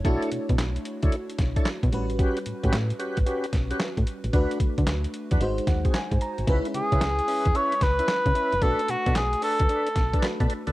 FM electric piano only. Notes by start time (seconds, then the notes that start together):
0.04 A3 D4 E4 F#4
1.92 G3 C#4 F#4 B4
4.33 A3 D4 F#4 B4
5.40 G#3 D#4 F#4 C5
5.68 F#5
5.95 G#5
6.22 A#5
6.47 G#3 C#4 D#4 B4
6.55 E4
8.62 A3 D4 F#4 B4
10.23 A3 D4 F#4 B4